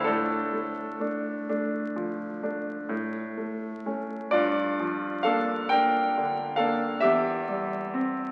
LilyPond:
<<
  \new Staff \with { instrumentName = "Grand piano" } { \time 9/8 \key d \minor \tempo 4. = 43 <d' a'>1 r8 | <f' d''>4 <a' f''>8 <bes' g''>4 <a' f''>8 <g' e''>4. | }
  \new Staff \with { instrumentName = "Grand piano" } { \time 9/8 \key d \minor a,8 a8 <a d'>8 <a d'>8 f8 <a d'>8 a,8 a8 <a cis'>8 | g,8 f8 <bes d'>8 <bes d'>8 d8 <bes d'>8 e,8 g8 c'8 | }
>>